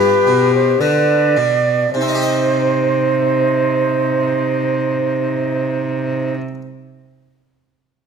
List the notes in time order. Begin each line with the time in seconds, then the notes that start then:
Already playing: G2 B3 F4 G4 B4
0.27 B2
0.54 C5
0.80 D3 B4 D5
1.37 B2
1.94 C3 D#4 C5
2.01 C4
2.08 D#4
2.15 G4
2.22 D#5